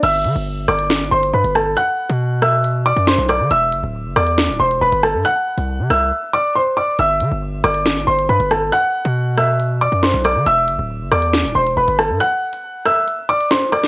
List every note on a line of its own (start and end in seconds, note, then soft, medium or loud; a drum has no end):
0.03 0.26 G1 loud
0.03 0.65 E5 medium
0.03 0.65 E6 loud
0.03 closed hi-hat medium
0.03 crash loud
0.25 0.35 D3 loud
0.25 closed hi-hat medium
0.36 0.67 G1 loud
0.68 1.10 G1 loud
0.68 1.10 D5 medium
0.68 1.09 D6 medium
0.68 cross-stick loud
0.79 closed hi-hat medium
0.90 snare loud
0.90 closed hi-hat medium
0.97 closed hi-hat medium
1.05 closed hi-hat medium
1.11 1.33 G1 loud
1.11 1.31 C5 medium
1.11 1.31 C6 medium
1.23 closed hi-hat medium
1.33 1.44 G2 loud
1.33 1.53 B4 medium
1.33 1.53 B5 medium
1.44 1.76 G1 loud
1.44 closed hi-hat loud
1.55 1.75 A4 medium
1.55 1.74 A5 medium
1.55 cross-stick medium
1.77 2.39 F#5 medium
1.77 2.38 F#6 medium
1.77 closed hi-hat medium
2.10 2.93 B2 loud
2.10 closed hi-hat medium
2.42 2.83 E5 medium
2.42 2.83 E6 medium
2.42 cross-stick loud
2.42 closed hi-hat medium
2.64 closed hi-hat medium
2.86 3.05 D5 medium
2.86 3.05 D6 medium
2.97 3.17 F#2 loud
2.97 closed hi-hat medium
3.07 3.27 C5 medium
3.07 3.27 C6 medium
3.07 snare loud
3.18 3.42 B1 loud
3.18 closed hi-hat medium
3.29 3.49 D5 medium
3.29 3.48 D6 medium
3.29 cross-stick loud
3.29 closed hi-hat medium
3.40 3.50 D3 loud
3.51 3.74 E1 loud
3.51 4.13 E5 medium
3.51 4.12 E6 loud
3.51 closed hi-hat medium
3.72 3.83 F#1 loud
3.72 closed hi-hat medium
3.83 4.07 D1 loud
4.05 4.16 F#1 loud
4.16 4.50 E2 loud
4.16 4.57 D5 medium
4.16 4.57 D6 medium
4.16 cross-stick loud
4.27 closed hi-hat medium
4.38 snare loud
4.38 closed hi-hat medium
4.45 4.59 D1 loud
4.45 closed hi-hat medium
4.52 closed hi-hat medium
4.60 4.80 E1 loud
4.60 4.79 C5 medium
4.60 4.79 C6 medium
4.71 closed hi-hat medium
4.81 4.92 E1 loud
4.81 5.01 B4 medium
4.81 5.00 B5 medium
4.92 5.15 G1 loud
4.92 closed hi-hat medium
5.03 5.23 A4 medium
5.03 5.22 A5 medium
5.03 cross-stick loud
5.14 5.24 G2 loud
5.25 5.86 F#5 medium
5.25 5.86 F#6 loud
5.25 closed hi-hat medium
5.57 5.81 C2 loud
5.57 closed hi-hat medium
5.79 5.89 C3 loud
5.90 6.12 C2 loud
5.90 6.31 E5 medium
5.90 6.31 E6 medium
5.90 cross-stick loud
5.90 closed hi-hat medium
6.33 6.53 D5 medium
6.33 6.52 D6 medium
6.55 6.75 C5 medium
6.55 6.74 C6 medium
6.77 6.96 D5 medium
6.77 6.96 D6 medium
6.99 7.22 G1 loud
6.99 7.61 E5 medium
6.99 7.60 E6 loud
6.99 closed hi-hat medium
7.20 7.31 D3 loud
7.20 closed hi-hat medium
7.31 7.63 G1 loud
7.64 8.06 G1 loud
7.64 8.05 D5 medium
7.64 8.05 D6 medium
7.64 cross-stick loud
7.74 closed hi-hat medium
7.86 snare loud
7.86 closed hi-hat medium
7.93 closed hi-hat medium
8.00 closed hi-hat medium
8.07 8.28 G1 loud
8.07 8.27 C5 medium
8.07 8.26 C6 medium
8.19 closed hi-hat medium
8.29 8.40 G2 loud
8.29 8.49 B4 medium
8.29 8.48 B5 medium
8.40 8.71 G1 loud
8.40 closed hi-hat medium
8.51 8.71 A4 medium
8.51 8.70 A5 medium
8.51 cross-stick loud
8.72 9.34 F#5 medium
8.72 9.34 F#6 loud
8.72 closed hi-hat medium
9.05 9.89 B2 loud
9.05 closed hi-hat medium
9.38 9.79 E5 medium
9.38 9.79 E6 medium
9.38 cross-stick loud
9.38 closed hi-hat medium
9.60 closed hi-hat medium
9.81 10.01 D5 medium
9.81 10.00 D6 medium
9.92 10.13 F#2 loud
9.92 closed hi-hat medium
10.03 10.23 C5 medium
10.03 10.22 C6 medium
10.03 snare loud
10.14 10.37 B1 loud
10.14 closed hi-hat medium
10.25 10.44 D5 medium
10.25 10.44 D6 medium
10.25 cross-stick loud
10.25 closed hi-hat medium
10.36 10.46 D3 loud
10.46 10.70 E1 loud
10.46 11.08 E5 medium
10.46 11.08 E6 loud
10.46 closed hi-hat medium
10.68 10.79 F#1 loud
10.68 closed hi-hat medium
10.79 11.02 D1 loud
11.01 11.11 F#1 loud
11.12 11.46 E2 loud
11.12 11.53 D5 medium
11.12 11.53 D6 medium
11.12 cross-stick loud
11.22 closed hi-hat medium
11.33 snare loud
11.33 closed hi-hat medium
11.41 11.55 D1 loud
11.41 closed hi-hat medium
11.48 closed hi-hat medium
11.55 11.76 E1 loud
11.55 11.75 C5 medium
11.55 11.74 C6 medium
11.67 closed hi-hat medium
11.77 11.87 E1 loud
11.77 11.96 B4 medium
11.77 11.96 B5 medium
11.88 12.11 G1 loud
11.88 closed hi-hat loud
11.99 12.18 A4 medium
11.99 12.18 A5 medium
11.99 cross-stick loud
12.10 12.20 G2 loud
12.20 12.82 F#5 medium
12.20 12.82 F#6 loud
12.20 closed hi-hat medium
12.53 closed hi-hat medium
12.86 13.27 E5 medium
12.86 13.27 E6 medium
12.86 cross-stick loud
12.86 closed hi-hat medium
13.08 closed hi-hat medium
13.29 13.49 D5 medium
13.29 13.48 D6 medium
13.41 closed hi-hat medium
13.51 13.70 C5 medium
13.51 13.70 C6 medium
13.51 snare loud
13.62 closed hi-hat medium
13.72 13.88 D5 medium
13.72 13.88 D6 medium
13.72 cross-stick loud
13.72 closed hi-hat medium
13.84 snare medium